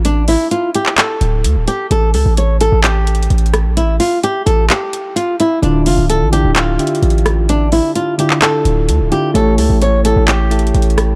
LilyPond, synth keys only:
\new Staff \with { instrumentName = "Synth keys" } { \time 4/4 \key d \minor \tempo 4 = 129 r1 | r1 | r1 | <d d' e' f'>4 r8 <d d' e' g'>8 r8 <d d' g' e''>4. |
r4. <d d' e' f'>4. r8 <d d' e' f'>8 | <a e' g' cis''>4 r8 <a e' g' cis''>8 r8 <a e' g' a'>4. | }